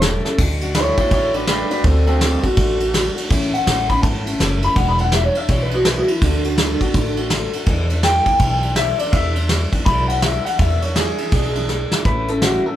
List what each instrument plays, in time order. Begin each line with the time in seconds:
Already playing: upright bass E1
0.02 steel-string acoustic guitar A2 E3 A3 C#4 E4, clean electric guitar A4, snare, closed hi-hat
0.25 steel-string acoustic guitar A3 C#4 E4, clean electric guitar A4, snare
0.38 upright bass D2, steel-string acoustic guitar D3 A3 D4 F#4, kick, crash
0.61 steel-string acoustic guitar A3 D4 F#4, ride
0.75 steel-string acoustic guitar D3 A3 D4 F#4, clean electric guitar E4 C#5, snare, ride
0.97 steel-string acoustic guitar A3 D4 F#4, clean electric guitar E4 C#5, kick, ride
1.11 upright bass A1, steel-string acoustic guitar D3 A3 D4 F#4, clean electric guitar E4 C#5, kick, ride
1.34 steel-string acoustic guitar A3 D4 F#4, clean electric guitar D4 B4, ride
1.47 steel-string acoustic guitar D3 A3 D4 F#4, clean electric guitar D4 B4, snare, ride
1.70 steel-string acoustic guitar A3 D4 F#4, clean electric guitar D4 B4, ride
1.84 upright bass D2, steel-string acoustic guitar D3 A3 D4 F#4, clean electric guitar C4 A4, kick, ride
2.07 steel-string acoustic guitar A3 D4 F#4, clean electric guitar C4 A4, ride
2.21 steel-string acoustic guitar D3 D4 F#4, clean electric guitar C4 A4, snare, ride
2.42 steel-string acoustic guitar A3 D4 F#4, clean electric guitar F#4, kick, ride
2.57 upright bass A1, steel-string acoustic guitar D3 A3 D4 F#4, kick, ride
2.80 steel-string acoustic guitar A3 D4 F#4, ride
2.93 steel-string acoustic guitar D3 A3 D4 F#4, snare, ride
3.16 steel-string acoustic guitar A3 D4 F#4, ride
3.29 upright bass A1, steel-string acoustic guitar A2 E3 A3 C#4 E4, kick, ride
3.53 steel-string acoustic guitar A3 C#4 E4, clean electric guitar F#5, ride
3.66 upright bass A1, steel-string acoustic guitar E3 A3 C#4 E4, snare, ride
3.89 steel-string acoustic guitar A3 C#4 E4, clean electric guitar B5, kick, ride
4.02 upright bass G#1, steel-string acoustic guitar A2 E3 A3 C#4 E4, clean electric guitar A5, kick, ride
4.25 steel-string acoustic guitar A3 C#4 E4, ride
4.40 upright bass F#1, steel-string acoustic guitar E3 A3 C#4 E4, snare, ride
4.62 steel-string acoustic guitar A3 C#4 E4, clean electric guitar B5, ride
4.76 upright bass E1, steel-string acoustic guitar E2 B2 E3 G#3 D4 E4, clean electric guitar F#5, kick, ride
4.88 clean electric guitar B5
4.99 steel-string acoustic guitar G#3 D4 E4, clean electric guitar F#5, ride
5.03 steel-string acoustic guitar E3
5.12 steel-string acoustic guitar E3 G#3 D4, clean electric guitar E5, snare, ride
5.16 steel-string acoustic guitar E4
5.24 clean electric guitar C#5
5.35 steel-string acoustic guitar E3 G#3 D4 E4, clean electric guitar E5, ride
5.48 upright bass B1, steel-string acoustic guitar E2 B2 E3 G#3 D4 E4, clean electric guitar C#5, kick, ride
5.63 clean electric guitar B4
5.71 steel-string acoustic guitar E3 G#3 D4 E4, clean electric guitar F#4, ride
5.85 steel-string acoustic guitar E3 G#3 D4 E4, clean electric guitar B4, snare, ride
5.98 clean electric guitar F#4
6.08 steel-string acoustic guitar E3 G#3 D4 E4, clean electric guitar E4, ride
6.22 upright bass D2, steel-string acoustic guitar D3 A3 D4 F#4, clean electric guitar D4, kick, ride
6.44 steel-string acoustic guitar A3 D4 F#4, ride
6.58 steel-string acoustic guitar D3 A3 D4, snare, ride
6.81 steel-string acoustic guitar A3 D4 F#4, kick, ride
6.94 upright bass A1, steel-string acoustic guitar D3 A3 D4 F#4, kick, ride
7.17 steel-string acoustic guitar A3 D4 F#4, ride
7.30 steel-string acoustic guitar D3 A3 D4 F#4, snare, ride
7.53 steel-string acoustic guitar A3 D4 F#4, ride
7.66 upright bass E2, steel-string acoustic guitar E2 B2 E3 G#3 D4 E4, kick, ride
7.90 steel-string acoustic guitar G#3 D4 E4, ride
7.94 steel-string acoustic guitar E3
8.03 steel-string acoustic guitar E3 G#3 D4 E4, clean electric guitar G5, snare, ride
8.26 steel-string acoustic guitar E3 G#3 D4 E4, kick, ride
8.39 upright bass B1, steel-string acoustic guitar E2 B2 E3 G#3 D4 E4, kick, ride
8.63 steel-string acoustic guitar E3 G#3 D4 E4, ride
8.76 steel-string acoustic guitar E3 G#3 D4 E4, clean electric guitar E5, snare, ride
8.98 steel-string acoustic guitar D4 E4, clean electric guitar D5, ride
9.02 steel-string acoustic guitar E3 G#3
9.12 upright bass E2, steel-string acoustic guitar E2 B2 E3 G#3 D4 E4, clean electric guitar E5, kick, ride
9.36 steel-string acoustic guitar E3 G#3 D4 E4, ride
9.49 steel-string acoustic guitar E3 G#3 D4 E4, snare, ride
9.72 steel-string acoustic guitar E3 G#3 D4 E4, kick, ride
9.86 upright bass B1, steel-string acoustic guitar E2 B2 E3 G#3 D4 E4, clean electric guitar B5, kick, ride
10.08 steel-string acoustic guitar E3 G#3 D4 E4, clean electric guitar F#5, ride
10.22 steel-string acoustic guitar E3 G#3 D4 E4, clean electric guitar E5, snare, ride
10.45 steel-string acoustic guitar E3 G#3 D4 E4, clean electric guitar F#5, ride
10.59 upright bass E2, steel-string acoustic guitar E2 B2 E3 G#3 D4 E4, clean electric guitar E5, kick, ride
10.82 steel-string acoustic guitar E3 G#3 D4 E4, clean electric guitar C#5, ride
10.96 steel-string acoustic guitar E3 G#3 D4 E4, clean electric guitar G#4, snare, ride
11.18 steel-string acoustic guitar G#3 D4 E4, ride
11.22 steel-string acoustic guitar E3
11.32 upright bass B1, steel-string acoustic guitar E2 B2 E3 G#3 D4, kick, ride
11.36 steel-string acoustic guitar E4
11.55 steel-string acoustic guitar E3 G#3 D4 E4, ride
11.69 steel-string acoustic guitar E3 G#3 D4 E4, snare
11.92 steel-string acoustic guitar E3 G#3 D4 E4, snare
12.05 upright bass A1, steel-string acoustic guitar A2 E3 A3 C#4 E4, clean electric guitar B4, kick, closed hi-hat
12.28 steel-string acoustic guitar A3 C#4 E4, clean electric guitar A4, closed hi-hat
12.42 steel-string acoustic guitar A2 E3 A3 C#4 E4, clean electric guitar F#4, snare, closed hi-hat
12.66 steel-string acoustic guitar A3 C#4 E4, clean electric guitar A4